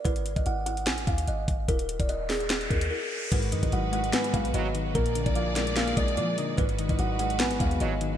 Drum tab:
CC |----------------|----------------|x---------------|----------------|
HH |xxxxx-xxxxxxx-x-|xxxxx-oxxxxx----|xxxxx-xxxxxxx-x-|xxxxx-xxxxxxx-x-|
SD |--------o-------|------o-o-------|--------o-------|------o-o-------|
BD |o--o------o---o-|o--o------o-----|o--o------o-----|o--o------o-----|

CC |----------------|
HH |xxxxx-xxxxxxx-x-|
SD |--------o-------|
BD |o--o------o-----|